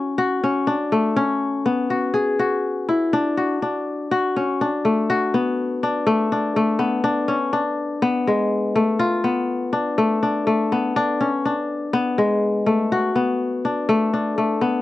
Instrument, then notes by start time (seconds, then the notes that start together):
kora
Already playing: C#4 E4 F#4
0.18 F#4
0.44 C#4
0.67 D4
0.92 A3
1.16 C#4
1.66 B3
1.90 F#4
2.14 G#4
2.39 F#4
2.89 E4
3.13 D4
3.37 F#4
3.62 D4
4.11 F#4
4.36 C#4
4.61 D4
4.85 A3
5.10 F#4
5.34 B3
5.83 D4
6.07 A3
6.32 D4
6.56 A3
6.79 B3
7.04 D4
7.28 C#4
7.53 D4
8.02 B3
8.27 G#3
8.76 A3
8.99 F4
9.24 B3
9.73 D4
9.98 A3
10.23 D4
10.47 A3
10.72 B3
10.96 D4
11.21 C#4
11.45 D4
11.93 B3
12.18 G#3
12.66 A3
12.92 F#4
13.16 B3
13.65 D4
13.89 A3
14.13 D4
14.38 A3
14.61 B3